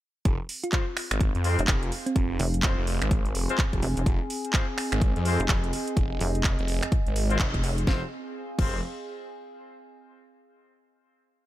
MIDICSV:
0, 0, Header, 1, 7, 480
1, 0, Start_track
1, 0, Key_signature, -4, "minor"
1, 0, Tempo, 476190
1, 255, Time_signature, 4, 2, 24, 8
1, 11554, End_track
2, 0, Start_track
2, 0, Title_t, "Ambient pad"
2, 0, Program_c, 0, 92
2, 256, Note_on_c, 0, 60, 91
2, 323, Note_on_c, 0, 68, 78
2, 733, Note_on_c, 0, 77, 78
2, 896, Note_on_c, 0, 80, 95
2, 4409, Note_on_c, 0, 75, 71
2, 4547, Note_off_c, 0, 77, 0
2, 7924, Note_off_c, 0, 60, 0
2, 7935, Note_off_c, 0, 68, 0
2, 7936, Note_off_c, 0, 75, 0
2, 7936, Note_off_c, 0, 80, 0
2, 7936, Note_on_c, 0, 60, 82
2, 8022, Note_on_c, 0, 68, 82
2, 8100, Note_on_c, 0, 77, 81
2, 8156, Note_on_c, 0, 80, 81
2, 9815, Note_off_c, 0, 60, 0
2, 9815, Note_off_c, 0, 68, 0
2, 9815, Note_off_c, 0, 77, 0
2, 9815, Note_off_c, 0, 80, 0
2, 11554, End_track
3, 0, Start_track
3, 0, Title_t, "Synth pluck"
3, 0, Program_c, 1, 84
3, 641, Note_on_c, 1, 65, 88
3, 701, Note_off_c, 1, 65, 0
3, 735, Note_on_c, 1, 65, 78
3, 829, Note_off_c, 1, 65, 0
3, 2080, Note_on_c, 1, 60, 92
3, 2415, Note_off_c, 1, 60, 0
3, 11554, End_track
4, 0, Start_track
4, 0, Title_t, "Horn section"
4, 0, Program_c, 2, 61
4, 735, Note_on_c, 2, 56, 80
4, 735, Note_on_c, 2, 60, 71
4, 735, Note_on_c, 2, 65, 72
4, 735, Note_on_c, 2, 72, 88
4, 837, Note_off_c, 2, 56, 0
4, 837, Note_off_c, 2, 60, 0
4, 837, Note_off_c, 2, 65, 0
4, 837, Note_off_c, 2, 72, 0
4, 1455, Note_on_c, 2, 56, 94
4, 1455, Note_on_c, 2, 60, 86
4, 1455, Note_on_c, 2, 65, 85
4, 1455, Note_on_c, 2, 72, 103
4, 1612, Note_off_c, 2, 56, 0
4, 1612, Note_off_c, 2, 60, 0
4, 1612, Note_off_c, 2, 65, 0
4, 1613, Note_off_c, 2, 72, 0
4, 2654, Note_on_c, 2, 56, 86
4, 2654, Note_on_c, 2, 60, 82
4, 2654, Note_on_c, 2, 65, 81
4, 2654, Note_on_c, 2, 72, 97
4, 2812, Note_off_c, 2, 56, 0
4, 2812, Note_off_c, 2, 60, 0
4, 2812, Note_off_c, 2, 65, 0
4, 2812, Note_off_c, 2, 72, 0
4, 3521, Note_on_c, 2, 56, 98
4, 3521, Note_on_c, 2, 60, 88
4, 3521, Note_on_c, 2, 65, 90
4, 3521, Note_on_c, 2, 72, 107
4, 3632, Note_off_c, 2, 60, 0
4, 3632, Note_off_c, 2, 65, 0
4, 3633, Note_off_c, 2, 56, 0
4, 3633, Note_off_c, 2, 72, 0
4, 4575, Note_on_c, 2, 56, 81
4, 4575, Note_on_c, 2, 60, 73
4, 4575, Note_on_c, 2, 65, 74
4, 4575, Note_on_c, 2, 72, 88
4, 4677, Note_off_c, 2, 56, 0
4, 4677, Note_off_c, 2, 60, 0
4, 4677, Note_off_c, 2, 72, 0
4, 4678, Note_off_c, 2, 65, 0
4, 5295, Note_on_c, 2, 56, 99
4, 5295, Note_on_c, 2, 60, 86
4, 5295, Note_on_c, 2, 65, 88
4, 5295, Note_on_c, 2, 72, 104
4, 5452, Note_off_c, 2, 56, 0
4, 5452, Note_off_c, 2, 60, 0
4, 5452, Note_off_c, 2, 65, 0
4, 5452, Note_off_c, 2, 72, 0
4, 7360, Note_on_c, 2, 56, 99
4, 7360, Note_on_c, 2, 60, 89
4, 7360, Note_on_c, 2, 65, 91
4, 7360, Note_on_c, 2, 72, 108
4, 7472, Note_off_c, 2, 56, 0
4, 7472, Note_off_c, 2, 60, 0
4, 7472, Note_off_c, 2, 65, 0
4, 7472, Note_off_c, 2, 72, 0
4, 7935, Note_on_c, 2, 56, 86
4, 7935, Note_on_c, 2, 60, 80
4, 7935, Note_on_c, 2, 65, 78
4, 7935, Note_on_c, 2, 72, 99
4, 8088, Note_off_c, 2, 56, 0
4, 8088, Note_off_c, 2, 60, 0
4, 8089, Note_off_c, 2, 65, 0
4, 8089, Note_off_c, 2, 72, 0
4, 8655, Note_on_c, 2, 56, 92
4, 8655, Note_on_c, 2, 65, 83
4, 8655, Note_on_c, 2, 72, 101
4, 8656, Note_on_c, 2, 60, 83
4, 8843, Note_off_c, 2, 56, 0
4, 8844, Note_off_c, 2, 60, 0
4, 8844, Note_off_c, 2, 65, 0
4, 8844, Note_off_c, 2, 72, 0
4, 11554, End_track
5, 0, Start_track
5, 0, Title_t, "Detuned saw bass"
5, 0, Program_c, 3, 39
5, 255, Note_on_c, 3, 29, 100
5, 378, Note_off_c, 3, 29, 0
5, 1121, Note_on_c, 3, 32, 97
5, 1338, Note_off_c, 3, 32, 0
5, 1361, Note_on_c, 3, 41, 102
5, 1578, Note_off_c, 3, 41, 0
5, 1695, Note_on_c, 3, 29, 99
5, 1920, Note_off_c, 3, 29, 0
5, 2175, Note_on_c, 3, 29, 104
5, 2400, Note_off_c, 3, 29, 0
5, 2801, Note_on_c, 3, 29, 98
5, 3018, Note_off_c, 3, 29, 0
5, 3042, Note_on_c, 3, 32, 101
5, 3361, Note_off_c, 3, 32, 0
5, 3375, Note_on_c, 3, 29, 98
5, 3498, Note_off_c, 3, 29, 0
5, 3761, Note_on_c, 3, 29, 99
5, 3840, Note_off_c, 3, 29, 0
5, 4095, Note_on_c, 3, 29, 103
5, 4218, Note_off_c, 3, 29, 0
5, 4961, Note_on_c, 3, 32, 101
5, 5178, Note_off_c, 3, 32, 0
5, 5202, Note_on_c, 3, 41, 102
5, 5419, Note_off_c, 3, 41, 0
5, 5535, Note_on_c, 3, 29, 99
5, 5760, Note_off_c, 3, 29, 0
5, 6015, Note_on_c, 3, 29, 100
5, 6240, Note_off_c, 3, 29, 0
5, 6641, Note_on_c, 3, 29, 99
5, 6858, Note_off_c, 3, 29, 0
5, 7122, Note_on_c, 3, 32, 102
5, 7440, Note_off_c, 3, 32, 0
5, 7935, Note_on_c, 3, 29, 100
5, 8089, Note_off_c, 3, 29, 0
5, 8655, Note_on_c, 3, 29, 98
5, 8879, Note_off_c, 3, 29, 0
5, 11554, End_track
6, 0, Start_track
6, 0, Title_t, "Wobble bass"
6, 0, Program_c, 4, 39
6, 1601, Note_on_c, 4, 29, 98
6, 1680, Note_off_c, 4, 29, 0
6, 2415, Note_on_c, 4, 29, 99
6, 2778, Note_off_c, 4, 29, 0
6, 3856, Note_on_c, 4, 29, 100
6, 3978, Note_off_c, 4, 29, 0
6, 4002, Note_on_c, 4, 29, 102
6, 4081, Note_off_c, 4, 29, 0
6, 5441, Note_on_c, 4, 29, 101
6, 5520, Note_off_c, 4, 29, 0
6, 6256, Note_on_c, 4, 29, 101
6, 6618, Note_off_c, 4, 29, 0
6, 7455, Note_on_c, 4, 29, 98
6, 7920, Note_off_c, 4, 29, 0
6, 11554, End_track
7, 0, Start_track
7, 0, Title_t, "Drums"
7, 255, Note_on_c, 9, 36, 121
7, 255, Note_on_c, 9, 42, 69
7, 355, Note_off_c, 9, 42, 0
7, 356, Note_off_c, 9, 36, 0
7, 495, Note_on_c, 9, 46, 105
7, 595, Note_off_c, 9, 46, 0
7, 640, Note_on_c, 9, 42, 55
7, 729, Note_on_c, 9, 39, 127
7, 734, Note_off_c, 9, 42, 0
7, 734, Note_on_c, 9, 42, 69
7, 735, Note_on_c, 9, 36, 122
7, 830, Note_off_c, 9, 39, 0
7, 835, Note_off_c, 9, 42, 0
7, 836, Note_off_c, 9, 36, 0
7, 974, Note_on_c, 9, 26, 83
7, 974, Note_on_c, 9, 46, 95
7, 1075, Note_off_c, 9, 26, 0
7, 1075, Note_off_c, 9, 46, 0
7, 1121, Note_on_c, 9, 26, 86
7, 1121, Note_on_c, 9, 42, 57
7, 1215, Note_off_c, 9, 42, 0
7, 1215, Note_on_c, 9, 36, 122
7, 1215, Note_on_c, 9, 42, 66
7, 1221, Note_off_c, 9, 26, 0
7, 1316, Note_off_c, 9, 36, 0
7, 1316, Note_off_c, 9, 42, 0
7, 1361, Note_on_c, 9, 42, 39
7, 1455, Note_on_c, 9, 46, 108
7, 1461, Note_off_c, 9, 42, 0
7, 1555, Note_off_c, 9, 46, 0
7, 1601, Note_on_c, 9, 42, 54
7, 1690, Note_on_c, 9, 39, 127
7, 1695, Note_off_c, 9, 42, 0
7, 1695, Note_on_c, 9, 26, 88
7, 1695, Note_on_c, 9, 36, 118
7, 1695, Note_on_c, 9, 42, 73
7, 1790, Note_off_c, 9, 39, 0
7, 1796, Note_off_c, 9, 26, 0
7, 1796, Note_off_c, 9, 36, 0
7, 1796, Note_off_c, 9, 42, 0
7, 1841, Note_on_c, 9, 42, 39
7, 1935, Note_on_c, 9, 46, 95
7, 1942, Note_off_c, 9, 42, 0
7, 2035, Note_off_c, 9, 46, 0
7, 2081, Note_on_c, 9, 42, 56
7, 2174, Note_off_c, 9, 42, 0
7, 2174, Note_on_c, 9, 42, 68
7, 2175, Note_on_c, 9, 36, 125
7, 2275, Note_off_c, 9, 42, 0
7, 2276, Note_off_c, 9, 36, 0
7, 2414, Note_on_c, 9, 46, 113
7, 2515, Note_off_c, 9, 46, 0
7, 2561, Note_on_c, 9, 42, 52
7, 2649, Note_on_c, 9, 39, 127
7, 2654, Note_off_c, 9, 42, 0
7, 2654, Note_on_c, 9, 42, 70
7, 2655, Note_on_c, 9, 36, 126
7, 2750, Note_off_c, 9, 39, 0
7, 2755, Note_off_c, 9, 42, 0
7, 2756, Note_off_c, 9, 36, 0
7, 2894, Note_on_c, 9, 46, 100
7, 2995, Note_off_c, 9, 46, 0
7, 3041, Note_on_c, 9, 26, 83
7, 3041, Note_on_c, 9, 42, 56
7, 3135, Note_off_c, 9, 42, 0
7, 3135, Note_on_c, 9, 36, 127
7, 3135, Note_on_c, 9, 42, 67
7, 3142, Note_off_c, 9, 26, 0
7, 3236, Note_off_c, 9, 36, 0
7, 3236, Note_off_c, 9, 42, 0
7, 3281, Note_on_c, 9, 42, 38
7, 3376, Note_on_c, 9, 46, 116
7, 3382, Note_off_c, 9, 42, 0
7, 3476, Note_off_c, 9, 46, 0
7, 3521, Note_on_c, 9, 42, 53
7, 3610, Note_on_c, 9, 39, 127
7, 3615, Note_off_c, 9, 42, 0
7, 3615, Note_on_c, 9, 36, 126
7, 3615, Note_on_c, 9, 42, 69
7, 3711, Note_off_c, 9, 39, 0
7, 3716, Note_off_c, 9, 36, 0
7, 3716, Note_off_c, 9, 42, 0
7, 3761, Note_on_c, 9, 36, 65
7, 3761, Note_on_c, 9, 42, 38
7, 3855, Note_on_c, 9, 46, 99
7, 3862, Note_off_c, 9, 36, 0
7, 3862, Note_off_c, 9, 42, 0
7, 3956, Note_off_c, 9, 46, 0
7, 4001, Note_on_c, 9, 42, 52
7, 4095, Note_on_c, 9, 36, 127
7, 4096, Note_off_c, 9, 42, 0
7, 4096, Note_on_c, 9, 42, 67
7, 4196, Note_off_c, 9, 36, 0
7, 4196, Note_off_c, 9, 42, 0
7, 4335, Note_on_c, 9, 46, 111
7, 4436, Note_off_c, 9, 46, 0
7, 4481, Note_on_c, 9, 42, 53
7, 4569, Note_on_c, 9, 39, 126
7, 4574, Note_off_c, 9, 42, 0
7, 4574, Note_on_c, 9, 42, 68
7, 4575, Note_on_c, 9, 36, 127
7, 4670, Note_off_c, 9, 39, 0
7, 4675, Note_off_c, 9, 42, 0
7, 4676, Note_off_c, 9, 36, 0
7, 4815, Note_on_c, 9, 26, 77
7, 4815, Note_on_c, 9, 46, 99
7, 4916, Note_off_c, 9, 26, 0
7, 4916, Note_off_c, 9, 46, 0
7, 4961, Note_on_c, 9, 26, 80
7, 4961, Note_on_c, 9, 42, 53
7, 5055, Note_on_c, 9, 36, 127
7, 5056, Note_off_c, 9, 42, 0
7, 5056, Note_on_c, 9, 42, 63
7, 5062, Note_off_c, 9, 26, 0
7, 5156, Note_off_c, 9, 36, 0
7, 5156, Note_off_c, 9, 42, 0
7, 5202, Note_on_c, 9, 42, 36
7, 5296, Note_on_c, 9, 46, 113
7, 5303, Note_off_c, 9, 42, 0
7, 5396, Note_off_c, 9, 46, 0
7, 5442, Note_on_c, 9, 42, 53
7, 5531, Note_on_c, 9, 39, 127
7, 5535, Note_on_c, 9, 36, 126
7, 5536, Note_off_c, 9, 42, 0
7, 5536, Note_on_c, 9, 26, 83
7, 5536, Note_on_c, 9, 42, 67
7, 5632, Note_off_c, 9, 39, 0
7, 5636, Note_off_c, 9, 36, 0
7, 5637, Note_off_c, 9, 26, 0
7, 5637, Note_off_c, 9, 42, 0
7, 5682, Note_on_c, 9, 42, 37
7, 5776, Note_on_c, 9, 46, 101
7, 5783, Note_off_c, 9, 42, 0
7, 5877, Note_off_c, 9, 46, 0
7, 5922, Note_on_c, 9, 42, 53
7, 6015, Note_off_c, 9, 42, 0
7, 6015, Note_on_c, 9, 36, 125
7, 6015, Note_on_c, 9, 42, 64
7, 6116, Note_off_c, 9, 36, 0
7, 6116, Note_off_c, 9, 42, 0
7, 6255, Note_on_c, 9, 46, 115
7, 6356, Note_off_c, 9, 46, 0
7, 6401, Note_on_c, 9, 42, 51
7, 6489, Note_on_c, 9, 39, 124
7, 6495, Note_off_c, 9, 42, 0
7, 6495, Note_on_c, 9, 36, 127
7, 6495, Note_on_c, 9, 42, 64
7, 6590, Note_off_c, 9, 39, 0
7, 6596, Note_off_c, 9, 36, 0
7, 6596, Note_off_c, 9, 42, 0
7, 6640, Note_on_c, 9, 42, 36
7, 6734, Note_on_c, 9, 46, 102
7, 6741, Note_off_c, 9, 42, 0
7, 6835, Note_off_c, 9, 46, 0
7, 6881, Note_on_c, 9, 26, 84
7, 6881, Note_on_c, 9, 42, 52
7, 6974, Note_off_c, 9, 42, 0
7, 6974, Note_on_c, 9, 42, 64
7, 6975, Note_on_c, 9, 36, 127
7, 6981, Note_off_c, 9, 26, 0
7, 7075, Note_off_c, 9, 42, 0
7, 7076, Note_off_c, 9, 36, 0
7, 7122, Note_on_c, 9, 42, 35
7, 7215, Note_on_c, 9, 46, 113
7, 7222, Note_off_c, 9, 42, 0
7, 7316, Note_off_c, 9, 46, 0
7, 7362, Note_on_c, 9, 42, 51
7, 7451, Note_on_c, 9, 39, 124
7, 7455, Note_on_c, 9, 36, 127
7, 7456, Note_off_c, 9, 42, 0
7, 7456, Note_on_c, 9, 42, 66
7, 7552, Note_off_c, 9, 39, 0
7, 7556, Note_off_c, 9, 36, 0
7, 7557, Note_off_c, 9, 42, 0
7, 7601, Note_on_c, 9, 36, 65
7, 7602, Note_on_c, 9, 42, 35
7, 7696, Note_on_c, 9, 46, 101
7, 7702, Note_off_c, 9, 36, 0
7, 7703, Note_off_c, 9, 42, 0
7, 7797, Note_off_c, 9, 46, 0
7, 7842, Note_on_c, 9, 42, 52
7, 7935, Note_on_c, 9, 36, 116
7, 7936, Note_on_c, 9, 38, 88
7, 7943, Note_off_c, 9, 42, 0
7, 8036, Note_off_c, 9, 36, 0
7, 8037, Note_off_c, 9, 38, 0
7, 8655, Note_on_c, 9, 36, 114
7, 8656, Note_on_c, 9, 49, 93
7, 8756, Note_off_c, 9, 36, 0
7, 8757, Note_off_c, 9, 49, 0
7, 11554, End_track
0, 0, End_of_file